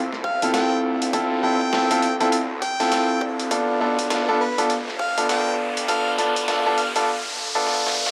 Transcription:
Already playing: C2, riser
0.13 snare
0.24 F5, kick
0.42 F1 C4 E4 F4 A4, closed hi-hat
0.54 G5, snare, closed hi-hat
0.84 D2
1.02 closed hi-hat
1.13 D2 C4 E4 F4 A4, kick, closed hi-hat
1.43 G1 C4 E4 F4 A4 G5
1.61 kick
1.73 C4 E4 F4 A4, snare
1.91 D2 C4 E4 F4 A4, closed hi-hat
2.02 G5, closed hi-hat
2.20 C4 E4 F4 A4 G5, closed hi-hat
2.32 D2, closed hi-hat
2.62 G5, kick, closed hi-hat
2.80 C4 E4 F4 A4, snare, closed hi-hat
2.92 snare, closed hi-hat
3.21 D2, kick
3.39 closed hi-hat
3.51 G1 B3 D4 F4 A4, kick, closed hi-hat
3.81 B1 B3 D4 F4 A4
3.99 kick, closed hi-hat
4.10 B3 D4 F4 A4, snare, closed hi-hat
4.29 B3 D4 F4 A4
4.40 B4
4.58 F1 B3 D4 F4 A4, closed hi-hat
4.70 closed hi-hat
4.88 snare
4.99 F5, kick
5.18 B1 B3 D4 F4 A4, closed hi-hat
5.29 G5, snare, closed hi-hat
5.59 G1
5.77 closed hi-hat
5.88 G1 B3 D4 F4 A4 F5, kick, closed hi-hat
6.18 B1 B3 D4 F4 A4, closed hi-hat
6.36 kick, closed hi-hat
6.48 B3 D4 F4 A4, snare, closed hi-hat
6.66 G2 B3 D4 F4 A4
6.78 F5, closed hi-hat
6.96 B3 D4 F4 A4 F5, closed hi-hat
7.55 B3 D4 F4 A4
7.67 snare
7.87 snare
8.06 snare

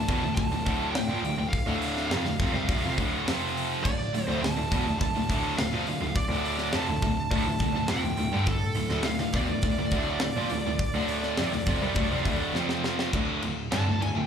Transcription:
Already playing: A2 A5
0.08 E2 B2, kick, open hi-hat
0.23 D2 A2
0.35 D2 A5, kick, open hi-hat
0.40 A2
0.51 D2 A2
0.66 D2 A2 D3, kick, open hi-hat
0.91 D2 G5, snare, open hi-hat
0.96 D2 A2
1.08 A#2 F3
1.22 D2 A2, open hi-hat
1.37 D2 A2
1.49 F5
1.53 kick, open hi-hat
1.66 D2 A2 D3
1.82 open hi-hat
1.97 snare
2.08 F2 C3 F5, snare, open hi-hat
2.24 D2 A2, snare
2.40 F2 C3, kick, open hi-hat
2.52 C2 C3 G3
2.68 D2 A2, kick, open hi-hat
2.82 F2 C3
2.86 F2 C3
2.97 D2 A2 D3, kick, open hi-hat
3.25 F2 C3 F3, snare, open hi-hat
3.29 F2 F3
3.57 open hi-hat
3.84 D2 A2 D5, kick, crash
4.12 D2 A2, open hi-hat
4.26 D2 A2 C5
4.42 D2 A2 A5, snare, open hi-hat
4.56 D2 A2
4.71 E2 B2, kick, open hi-hat
4.85 D2 A2
4.99 D2 A2 A5, kick, open hi-hat
5.15 D2 A2
5.29 D2 A2 D3, kick, open hi-hat
5.58 D2 A2 F5, snare, open hi-hat
5.72 A#2 F3
5.87 D2 A2, open hi-hat
6.01 D2 A2
6.15 D5, kick, open hi-hat
6.28 D2 A2 D3
6.45 open hi-hat
6.58 snare
6.73 F2 C3 A5, snare, open hi-hat
6.88 D2 A2
7.02 D2 A2, kick, open hi-hat
7.31 D2 A2 A5, kick, open hi-hat
7.37 A2
7.45 D2 A2
7.59 D2 A2, kick, open hi-hat
7.73 D2 A2
7.87 F2 G5, snare, open hi-hat
7.91 C3
8.03 D2 A2
8.17 D2 A2, open hi-hat
8.32 G2 D3
8.46 D2 A2 A4, kick, open hi-hat
8.75 D2 A2, open hi-hat
8.89 D2 A2, snare
9.03 D2 A2 F5, snare, open hi-hat
9.18 D2 A2, snare
9.32 E2 B2 D5, kick, open hi-hat
9.48 D2 A2
9.62 D2 A2, kick, open hi-hat
9.78 D2 A2
9.91 D2 A2 D3, kick, open hi-hat
10.20 D2 A2, snare, open hi-hat
10.36 A#2 F3
10.49 D2 A2, open hi-hat
10.66 D2 A2
10.79 kick, open hi-hat
10.94 D2 A2 D3
11.08 open hi-hat
11.23 snare
11.37 F2 C3, snare, open hi-hat
11.52 D2 A2, snare
11.66 F2 C3, kick, open hi-hat
11.82 C2 C3 G3
11.95 D2 A2, kick, open hi-hat
12.11 F2 C3
12.25 D2 A2 D3, kick, open hi-hat
12.55 F2 C3 F3, snare
12.69 snare
12.84 snare
12.99 snare
13.13 D2 A2 D3, kick, crash
13.42 D2 A2, crash
13.71 G2 D3 A5, snare, crash
13.86 D2 A2
14.00 D2 A2 G#5, crash
14.14 D2 A2 G5

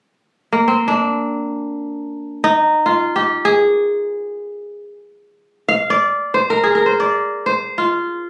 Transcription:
0.52 A#3
0.68 C4
0.88 D4
2.44 D#4
2.86 F4
3.16 G4
3.45 G#4
5.69 F5
5.90 D5
6.34 C5
6.50 A#4
6.63 G#4
6.75 A#4
6.86 C5
7.00 D5
7.46 C5
7.78 F4

